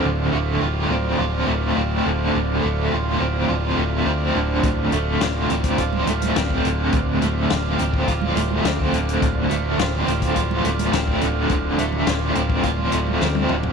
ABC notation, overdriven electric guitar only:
X:1
M:4/4
L:1/8
Q:1/4=105
K:Dm
V:1 name="Overdriven electric guitar"
[D,,D,A,CF] A, F C F A, C D, | D,, A, F C F A, C D, | D,, A, F C F A, C D, | D,, A, F C F A, C D, |
D,, A, F C F A, C D, | D,, A, F C F A, C D, |]